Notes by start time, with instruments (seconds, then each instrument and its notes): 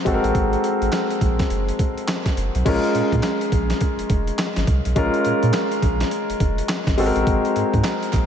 0.05 sub bass G#1, grand piano G#3 C4 F#4 A4, kick, closed hi-hat
0.14 grand piano A#4
0.24 sub bass A1, closed hi-hat
0.35 sub bass G#1, kick, closed hi-hat
0.53 closed hi-hat
0.64 closed hi-hat
0.82 sub bass G#1, closed hi-hat
0.92 snare, clap, closed hi-hat
1.10 closed hi-hat
1.21 sub bass A#1, kick, closed hi-hat
1.39 kick, snare, closed hi-hat
1.50 sub bass F#1, closed hi-hat
1.69 closed hi-hat
1.79 kick, closed hi-hat
1.98 closed hi-hat
2.08 snare, clap, closed hi-hat
2.26 kick, snare, closed hi-hat
2.37 sub bass F#1, closed hi-hat
2.55 sub bass B1, closed hi-hat
2.65 sub bass A#1, grand piano G#3 C#4 F4 A#4, kick, closed hi-hat, crash
2.84 closed hi-hat
2.95 sub bass A#2, closed hi-hat
3.12 sub bass A#2, kick, closed hi-hat
3.23 snare, clap, closed hi-hat
3.41 closed hi-hat
3.52 sub bass A#1, kick, closed hi-hat
3.70 snare, closed hi-hat
3.81 kick, closed hi-hat
3.99 sub bass F1, closed hi-hat
4.10 sub bass F1, kick, closed hi-hat
4.27 closed hi-hat
4.39 snare, clap, closed hi-hat
4.56 sub bass G#1, snare, closed hi-hat
4.67 sub bass C2, kick, closed hi-hat
4.85 sub bass B1, closed hi-hat
4.96 sub bass A#1, grand piano G#3 C#4 F4 A#4, kick, closed hi-hat
5.14 closed hi-hat
5.25 sub bass A#2, closed hi-hat
5.43 sub bass A#2, closed hi-hat
5.53 snare, clap, closed hi-hat
5.72 closed hi-hat
5.82 sub bass A#1, kick, closed hi-hat
6.00 snare, closed hi-hat
6.11 closed hi-hat
6.30 sub bass F1, closed hi-hat
6.40 sub bass F1, kick, closed hi-hat
6.58 closed hi-hat
6.69 snare, clap, closed hi-hat
6.87 sub bass G#1, kick, snare, closed hi-hat
6.98 sub bass G#1, grand piano G#3 C4 F#4 A4, open hi-hat
7.06 grand piano A#4
7.16 sub bass A1, closed hi-hat
7.27 sub bass G#1, kick, closed hi-hat
7.45 closed hi-hat
7.56 sub bass G#2, closed hi-hat
7.74 sub bass G#2, kick, closed hi-hat
7.84 snare, clap, closed hi-hat
8.03 closed hi-hat
8.13 sub bass A#1, kick, clap, closed hi-hat